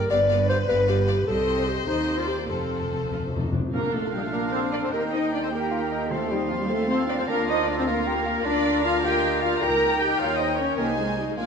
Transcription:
0.10 double bass section G1, cello section G2, viola section B3 G4, violin section B4 D5 F5, clarinet D5
0.30 viola section B3 G4, violin section D5 F5
0.49 viola section B3 G4, clarinet C5, violin section D5 F5
0.68 double bass section G1, cello section G2, viola section B3 G4, clarinet B4, violin section D5 F5
0.88 viola section B3 G4, clarinet G4, violin section D5 F5
1.07 viola section B3 G4, violin section D5 F5
1.26 cello section C2, double bass section C2, viola section C4 G4, clarinet A4, violin section C5 D#5
1.68 clarinet G4
1.87 double bass section D#2, cello section D#2, viola section C4 G4, clarinet D#4, violin section C5 D#5
2.18 clarinet F4, violin section D5
2.27 clarinet G4
2.49 double bass section F1, timpani F2, cello section F2, viola section C4 F4, clarinet A4, violin section A4 C5
2.58 timpani F2
2.66 timpani F2
2.74 timpani F2
2.81 timpani F2
2.89 timpani F2
2.97 timpani F2
3.05 timpani F2
3.11 timpani F2, viola section F4
3.19 timpani F2
3.28 timpani F2
3.32 timpani F2, viola section D#4
3.44 timpani F2
3.52 timpani F2, viola section D4
3.59 timpani F2
3.73 double bass section A#1, timpani A#2, cello section A#3, french horn section A#3, clarinet D4, violin section D4 A#4 F5, flute section F4, viola section A#4, oboe F5
3.93 french horn section A3, cello section A3, flute section F4, viola section A4
4.12 french horn section G3, cello section G3, flute section D#4, viola section G4
4.23 french horn section A3, cello section A3, flute section F4, viola section A4
4.33 french horn section A#3, cello section A#3, bassoon D4, flute section F4, viola section A#4
4.52 cello section C4, french horn section C4, flute section A4, viola section C5
4.73 cello section D4, french horn section D4, flute section A#4, viola section D5
4.82 cello section C4, french horn section C4, flute section A4, viola section C5
4.92 double bass section D#2, cello section A#3, french horn section A#3, bassoon D#4, clarinet D#4, violin section D#4 G5, flute section G4, viola section A#4, oboe G5
5.12 cello section D#4, french horn section D#4, flute section C5, viola section D#5
5.32 cello section D4, french horn section D4, flute section A#4, viola section D5
5.42 cello section C4, french horn section C4, flute section A4, viola section C5
5.51 cello section A#3, french horn section A#3, bassoon G4, flute section G4, viola section A#4
5.71 bassoon F4
5.91 bassoon D#4
6.09 timpani D#3, french horn section A3, cello section A3, bassoon C4, violin section C4 C5 F5, clarinet F4, flute section F4, viola section A4, oboe C6
6.30 cello section G3, french horn section G3, flute section D#4, viola section G4
6.49 french horn section F3, cello section F3, flute section D4, viola section F4
6.60 french horn section G3, cello section G3, flute section D#4, viola section G4
6.69 french horn section A3, cello section A3, bassoon C4, flute section F4, viola section A4
6.88 french horn section C4, cello section C4, flute section A4, viola section C5
7.07 french horn section D4, cello section D4, flute section A#4, viola section D5
7.18 french horn section C4, cello section C4, flute section A4, viola section C5
7.27 double bass section D2, french horn section A#3, cello section A#3, bassoon D4, flute section F4, violin section F4 A#4, viola section A#4, oboe A#5
7.47 cello section D#4, french horn section D#4, flute section C5, viola section D#5
7.67 cello section D4, french horn section D4, flute section A#4, viola section D5
7.76 cello section C4, french horn section C4, flute section A4, viola section C5
7.86 cello section A#3, french horn section A#3, bassoon F4, flute section F4, viola section A#4
8.07 bassoon G4
8.26 bassoon F4
8.45 double bass section D2, bassoon D4, cello section D4, french horn section D4, clarinet F4, violin section F4 A#4 F5, flute section A#4, viola section D5
8.84 french horn section F4, cello section F4, flute section D5, viola section F5
9.04 bassoon A#3, cello section G4, french horn section G4, flute section D#5, viola section G5
9.42 french horn section F4, cello section F4, flute section D5, viola section F5
9.62 double bass section C#2, clarinet D#4, violin section D#4 A#4 G5, french horn section A#4, cello section A#4, oboe G5, flute section G5, viola section A#5
10.00 french horn section G4, cello section G4, flute section D#5, viola section G5
10.19 double bass section D#2, bassoon C#4, cello section F4, french horn section F4, flute section C#5, viola section F5
10.38 cello section D#4, french horn section D#4, flute section C5, viola section D#5
10.57 cello section C#4, french horn section C#4, flute section A#4, viola section C#5
10.77 double bass section C2, french horn section A#3, cello section A#3, clarinet D#4, bassoon D#4, violin section D#4 C5 G#5, flute section G4, viola section A#4, oboe G#5
10.97 cello section G#3, french horn section G#3, flute section F4, viola section G#4
11.17 french horn section G3, cello section G3, flute section D#4, viola section G4
11.27 french horn section G#3, cello section G#3, flute section F4, viola section G#4
11.36 double bass section A#1, cello section A#3, french horn section A#3, clarinet D4, bassoon F4, flute section F4, violin section F4 D5 G#5, viola section A#4, oboe G#5

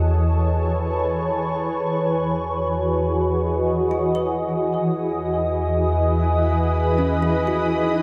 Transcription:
Already playing: synth drone E2, ambient pad E3 G#4 A4 B4 C#5
1.62 synth drone E2
2.15 ambient pad F#4
2.93 ambient pad D#5
3.91 kalimba F#4
4.15 kalimba B4
4.70 synth drone E2
5.51 ambient pad B4
6.98 kalimba C#4
7.22 kalimba E4
7.47 kalimba F#4
7.76 synth drone E2 E3 F#4, glass harmonica D#4 D#5

